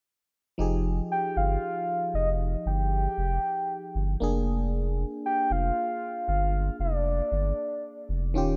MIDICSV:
0, 0, Header, 1, 4, 480
1, 0, Start_track
1, 0, Key_signature, -4, "minor"
1, 0, Tempo, 1034483
1, 273, Time_signature, 4, 2, 24, 8
1, 3975, End_track
2, 0, Start_track
2, 0, Title_t, "Soft synth lead"
2, 0, Program_c, 0, 80
2, 518, Note_on_c, 0, 79, 105
2, 636, Note_on_c, 0, 77, 109
2, 643, Note_off_c, 0, 79, 0
2, 994, Note_off_c, 0, 77, 0
2, 998, Note_on_c, 0, 75, 93
2, 1063, Note_off_c, 0, 75, 0
2, 1238, Note_on_c, 0, 79, 98
2, 1937, Note_off_c, 0, 79, 0
2, 2440, Note_on_c, 0, 79, 107
2, 2561, Note_on_c, 0, 77, 106
2, 2568, Note_off_c, 0, 79, 0
2, 2913, Note_off_c, 0, 77, 0
2, 2915, Note_on_c, 0, 77, 98
2, 3137, Note_off_c, 0, 77, 0
2, 3157, Note_on_c, 0, 74, 82
2, 3856, Note_off_c, 0, 74, 0
2, 3975, End_track
3, 0, Start_track
3, 0, Title_t, "FM electric piano"
3, 0, Program_c, 1, 5
3, 269, Note_on_c, 1, 53, 79
3, 274, Note_on_c, 1, 63, 70
3, 279, Note_on_c, 1, 67, 67
3, 285, Note_on_c, 1, 68, 79
3, 372, Control_c, 1, 64, 127
3, 1932, Note_off_c, 1, 53, 0
3, 1935, Note_off_c, 1, 63, 0
3, 1937, Note_off_c, 1, 67, 0
3, 1940, Note_off_c, 1, 68, 0
3, 1950, Note_on_c, 1, 58, 79
3, 1957, Note_on_c, 1, 62, 72
3, 1959, Control_c, 1, 64, 0
3, 1965, Note_on_c, 1, 68, 85
3, 2027, Control_c, 1, 64, 127
3, 3853, Note_off_c, 1, 58, 0
3, 3856, Note_off_c, 1, 62, 0
3, 3861, Note_off_c, 1, 68, 0
3, 3871, Note_on_c, 1, 51, 79
3, 3875, Note_on_c, 1, 61, 75
3, 3878, Control_c, 1, 64, 0
3, 3880, Note_on_c, 1, 65, 72
3, 3886, Note_on_c, 1, 67, 90
3, 3962, Control_c, 1, 64, 127
3, 3975, Note_off_c, 1, 51, 0
3, 3975, Note_off_c, 1, 61, 0
3, 3975, Note_off_c, 1, 65, 0
3, 3975, Note_off_c, 1, 67, 0
3, 3975, End_track
4, 0, Start_track
4, 0, Title_t, "Sub bass"
4, 0, Program_c, 2, 38
4, 274, Note_on_c, 2, 29, 102
4, 468, Note_off_c, 2, 29, 0
4, 633, Note_on_c, 2, 31, 91
4, 730, Note_off_c, 2, 31, 0
4, 993, Note_on_c, 2, 29, 93
4, 1187, Note_off_c, 2, 29, 0
4, 1234, Note_on_c, 2, 31, 94
4, 1427, Note_off_c, 2, 31, 0
4, 1474, Note_on_c, 2, 29, 98
4, 1571, Note_off_c, 2, 29, 0
4, 1833, Note_on_c, 2, 31, 88
4, 1930, Note_off_c, 2, 31, 0
4, 1954, Note_on_c, 2, 29, 91
4, 2342, Note_off_c, 2, 29, 0
4, 2554, Note_on_c, 2, 29, 93
4, 2651, Note_off_c, 2, 29, 0
4, 2914, Note_on_c, 2, 31, 89
4, 3108, Note_off_c, 2, 31, 0
4, 3153, Note_on_c, 2, 29, 95
4, 3347, Note_off_c, 2, 29, 0
4, 3395, Note_on_c, 2, 31, 90
4, 3491, Note_off_c, 2, 31, 0
4, 3754, Note_on_c, 2, 29, 92
4, 3875, Note_on_c, 2, 27, 100
4, 3882, Note_off_c, 2, 29, 0
4, 3975, Note_off_c, 2, 27, 0
4, 3975, End_track
0, 0, End_of_file